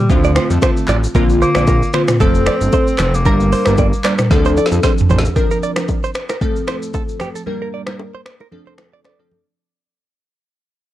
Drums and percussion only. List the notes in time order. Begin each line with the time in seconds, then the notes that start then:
0.09 kick, low conga, shaker
0.24 shaker
0.36 finger snap, cross-stick, low bongo, shaker
0.50 shaker
0.62 finger snap, kick, cross-stick, high bongo, shaker
0.77 shaker
0.88 clap, low conga, shaker
1.04 shaker
1.15 kick, low conga, shaker
1.30 shaker
1.42 shaker
1.55 finger snap, cross-stick, low bongo, shaker
1.67 kick, high bongo, shaker
1.82 shaker
1.93 finger snap, cross-stick, shaker
2.08 finger snap, cross-stick, mid tom, low bongo, shaker
2.20 kick, low conga, shaker
2.35 shaker
2.46 finger snap, cross-stick, low bongo, shaker
2.61 shaker
2.72 kick, high bongo, shaker
2.87 shaker
2.98 finger snap, cross-stick, clap, low conga, shaker
3.14 shaker
3.25 kick, low conga, shaker
3.40 shaker
3.52 open hi-hat, shaker
3.65 finger snap, cross-stick, low bongo, shaker
3.78 kick, high bongo, shaker
3.93 shaker
4.04 finger snap, cross-stick, clap, shaker
4.19 finger snap, cross-stick, mid tom, low bongo, shaker
4.31 kick, snare, low conga, shaker
4.45 shaker
4.57 low bongo, shaker
4.66 snare
4.72 shaker
4.83 kick, snare, high bongo, shaker
4.98 floor tom, shaker
5.10 low conga, shaker
5.19 snare
5.25 shaker
5.36 kick, low conga, shaker
5.51 shaker
5.63 shaker
5.76 finger snap, cross-stick, low bongo, shaker
5.88 kick, high bongo, shaker
6.04 shaker
6.14 finger snap, cross-stick, shaker
6.29 finger snap, cross-stick, low bongo, shaker
6.41 kick, low conga, shaker
6.56 shaker
6.68 finger snap, cross-stick, low bongo, shaker
6.82 shaker
6.94 kick, high bongo, shaker
7.09 shaker
7.20 finger snap, cross-stick, low conga, shaker
7.35 shaker
7.47 low conga
7.87 finger snap, cross-stick, low bongo
7.99 high bongo
8.26 finger snap, cross-stick
8.40 low bongo
8.52 low conga
8.78 finger snap, cross-stick, low bongo
9.04 finger snap, cross-stick, high bongo
9.31 low conga